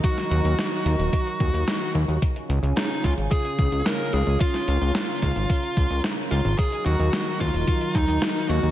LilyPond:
<<
  \new Staff \with { instrumentName = "Lead electric guitar" } { \time 4/4 \key ees \minor \tempo 4 = 110 ges'2.~ ges'8 r8 | r4 ees'8 f'8 aes'4 bes'8 aes'8 | f'4 f'2 r8 f'8 | aes'8 ges'4 f'4 ees'4 ges'8 | }
  \new Staff \with { instrumentName = "Analog synth pad" } { \time 4/4 \key ees \minor << { bes'1 | aes'1 | bes'1~ | bes'1 | } \\ { <ees ges ees'>1 | <des des' f'>1~ | <des des' f'>1 | <ees ges ees'>1 | } >> }
  \new Staff \with { instrumentName = "Analog synth bass" } { \clef bass \time 4/4 \key ees \minor r8 ees,16 ees,16 r8 ees,16 ees,,16 r8 ees,16 ees,16 r8 ees,16 ees,16 | r8 des,16 des,16 r8 des,16 aes,,16 r8 des,16 des,16 r8 des,16 des,16 | r8 des,16 des,16 r8 des,16 aes,,16 r8 des,16 des,16 r8 des,16 aes,,16 | r8 ees,16 ees,16 r8 ees,16 ees,,16 r8 ees,16 ees,16 r8 ees,16 ees,16 | }
  \new DrumStaff \with { instrumentName = "Drums" } \drummode { \time 4/4 <hh bd>16 <hh sn>16 hh16 hh16 <hh sn>16 hh16 hh16 hh16 <hh bd>16 hh16 <hh bd>16 hh16 <hh sn>16 hh16 hh16 hh16 | <hh bd>16 hh16 hh16 hh16 <hh sn>16 hh16 <hh bd>16 hh16 <hh bd>16 hh16 <hh bd>16 hh16 <hh sn>16 hh16 hh16 hh16 | <hh bd>16 <hh sn>16 hh16 hh16 <hh sn>16 hh16 <hh bd>16 hh16 <hh bd>16 hh16 <hh bd>16 hh16 <hh sn>16 hh16 hh16 hh16 | <hh bd>16 hh16 hh16 hh16 <hh sn>16 hh16 <hh bd>16 hh16 <hh bd>16 hh16 <hh bd>16 hh16 <hh sn>16 hh16 hh16 hh16 | }
>>